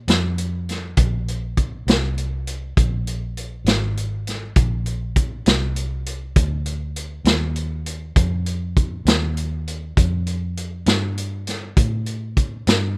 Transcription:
0.08 F2, snare, closed hi-hat
0.38 closed hi-hat
0.69 snare, closed hi-hat
0.97 A#1, kick, closed hi-hat
1.28 closed hi-hat
1.57 kick, closed hi-hat
1.87 C2, snare, closed hi-hat
2.18 closed hi-hat
2.47 closed hi-hat
2.77 A#1, kick, closed hi-hat
3.07 closed hi-hat
3.37 closed hi-hat
3.65 G#1, snare, closed hi-hat
3.97 closed hi-hat
4.27 snare, closed hi-hat
4.56 A#1, kick, closed hi-hat
4.86 closed hi-hat
5.16 kick, closed hi-hat
5.46 C2, snare, closed hi-hat
5.76 closed hi-hat
6.06 closed hi-hat
6.36 D2, kick, closed hi-hat
6.66 closed hi-hat
6.96 closed hi-hat
7.25 D#2, snare, closed hi-hat
7.56 closed hi-hat
7.86 closed hi-hat
8.16 F2, kick, closed hi-hat
8.46 closed hi-hat
8.77 kick, closed hi-hat
9.05 D#2, snare, closed hi-hat
9.37 closed hi-hat
9.67 closed hi-hat
9.97 F2, kick, closed hi-hat
10.27 closed hi-hat
10.57 closed hi-hat
10.86 G2, snare, closed hi-hat
11.18 closed hi-hat
11.47 snare, closed hi-hat
11.77 A2, kick, closed hi-hat
12.06 closed hi-hat
12.37 kick, closed hi-hat
12.67 G2, snare, closed hi-hat

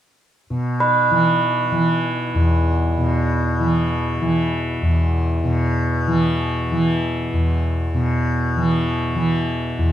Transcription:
0.50 B2
0.80 B4
1.11 E3
1.72 E3
2.35 E2
2.97 B2
3.60 E3
4.21 E3
4.82 E2
5.44 B2
6.07 E3
6.71 E3
7.33 E2
7.94 B2
8.57 E3
9.15 E3
9.78 E2

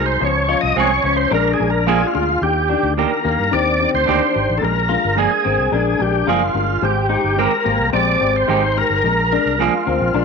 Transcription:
Already playing: C2 G#3 D#4 F#4 C5
0.06 C5
0.20 C#2 F3 C#4 C5
0.25 C#5
0.48 F3 C#4 F4 D#5
0.61 C2 D#5
0.76 C2 F3 G#3 C4 C#4 F4 G#4 C5
0.80 C#5
1.04 C#2 F3 C#4 C5
1.17 C5
1.31 A#1 G#3 D4 A#4
1.53 G#4
1.59 A#1 G#3 D4 A#4
1.70 A#4
1.87 F3 G#3 A#3 D4 F4 G#4
2.07 F4
2.14 D2 G#3 D4 F4 G#4
2.42 D#2 D#3 D4 G4
2.69 D#3 D4 G4
2.83 D2
2.97 D#3 A#3 D4 G4 A#4
3.23 D#2 D#3 A#3 D4 G4
3.39 G2
3.51 D#2 D#3 C4 D4 G4 D5
3.79 D#3 D4 G4
3.94 D2 C5
4.06 D2 D#3 A#3 D4 G4
4.34 G#1 D#3 D4 G4
4.50 A1
4.58 G#3 D4 A4
4.62 A#1 A#4
4.89 G#3 D4 F4 A#4
5.05 G1
5.16 F3 G#3 A#3 D4 G#4 A#4
5.44 G#1 G#3 C4 D4 A#4
5.59 C2
5.72 A#1 G#3 D4 A#4
5.99 A#1 G#3 D4 G4 A#4
6.26 F#1 F3 G#3 A#3 D4 F4 G#4 A#4
6.54 G1 G#3 D4 F4 A#4
6.82 G#1 G#3 G4 C5
7.09 G#3 D#4 G4 C5
7.24 G1
7.36 D#3 G#3 C4 G4 A#4 C5
7.65 G#1 G#3 A#3 G4 C5
7.79 C2
7.93 A#1 G#3 C4 G4 C5 D5
8.20 G#1 G#3 G4 C5
8.36 C5
8.48 G#1 D#3 G#3 C4 D#4 G4 C5
8.77 G#3 G4 A#4 C5
8.90 G1
9.04 A#1 G#3 D4 A#4
9.32 G#3 D4 A#4
9.46 C2
9.59 F3 G#3 A#3 D4 F4 G#4 A#4
9.86 D2 G#3 C4 D4 A#4
10.00 A#1
10.14 A#1 G#3 D4 A#4

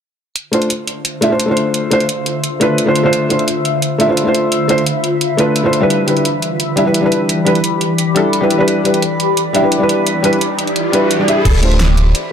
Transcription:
0.36 D3 F4 C5 E5, closed hi-hat
0.52 A3 D4 F4 C5, closed hi-hat
0.62 closed hi-hat
0.70 closed hi-hat
0.87 closed hi-hat
1.05 closed hi-hat
1.21 A3 D4 F4 E5, closed hi-hat
1.30 A3 D4 F4 C5
1.40 closed hi-hat
1.46 A3 D4 F4
1.51 C5
1.57 closed hi-hat
1.74 closed hi-hat
1.91 A3 D4 F4 C5, closed hi-hat
2.00 closed hi-hat
2.09 closed hi-hat
2.26 closed hi-hat
2.44 closed hi-hat
2.60 A3 D4 F4 B4, closed hi-hat
2.78 closed hi-hat
2.86 A3 D4 F4 C5
2.96 closed hi-hat
3.03 A3 D4 F4 C5
3.13 B5, closed hi-hat
3.29 A3 D4 F4 C5, closed hi-hat
3.39 closed hi-hat
3.48 closed hi-hat
3.65 closed hi-hat
3.82 closed hi-hat
3.98 A3 D4 F4 E5, closed hi-hat
4.07 A3 D4 F4 C5
4.17 closed hi-hat
4.23 A3 D4 F4
4.28 C5
4.35 closed hi-hat
4.52 closed hi-hat
4.68 A3 D4 F4 C5, closed hi-hat
4.78 closed hi-hat
4.86 closed hi-hat
5.04 closed hi-hat
5.21 closed hi-hat
5.37 A3 D4 F4 B4, closed hi-hat
5.56 closed hi-hat
5.63 A3 D4 F4 C5
5.73 closed hi-hat
5.81 G3 D4 E4 B4
5.90 E3 G4 D5, closed hi-hat
6.06 G3 D4 E4 B4, closed hi-hat
6.17 closed hi-hat
6.25 closed hi-hat
6.42 closed hi-hat
6.60 closed hi-hat
6.76 G3 D4 E4 E5, closed hi-hat
6.85 G3 D4 E4 B4
6.94 closed hi-hat
7.01 G3 D4 E4
7.06 B4
7.12 closed hi-hat
7.29 closed hi-hat
7.45 G3 D4 E4 B4, closed hi-hat
7.55 closed hi-hat
7.64 closed hi-hat
7.81 closed hi-hat
7.98 closed hi-hat
8.15 G3 D4 E4 A4, closed hi-hat
8.33 closed hi-hat
8.41 G3 D4 E4 B4
8.51 closed hi-hat
8.58 G3 D4 E4 B4
8.68 closed hi-hat, riser
8.84 G3 D4 E4 B4, closed hi-hat
8.94 closed hi-hat
9.02 closed hi-hat
9.20 closed hi-hat
9.37 closed hi-hat
9.53 G3 D4 E4 E5, closed hi-hat
9.62 G3 D4 E4 B4
9.72 closed hi-hat
9.78 G3 D4 E4
9.83 B4
9.89 closed hi-hat
10.06 closed hi-hat
10.22 G3 D4 E4 B4, closed hi-hat
10.33 closed hi-hat
10.41 closed hi-hat
10.59 closed hi-hat
10.67 closed hi-hat
10.76 closed hi-hat
10.92 G3 D4 E4 B4, closed hi-hat
11.11 closed hi-hat
11.18 G3 D4 E4 D5
11.27 G3 D4 E4 E5, closed hi-hat
11.45 D1 F4 C5 E5, kick, closed hi-hat, crash
11.61 A3 D4 F4 C5, closed hi-hat
11.72 closed hi-hat
11.80 snare, closed hi-hat
11.97 closed hi-hat
12.15 closed hi-hat

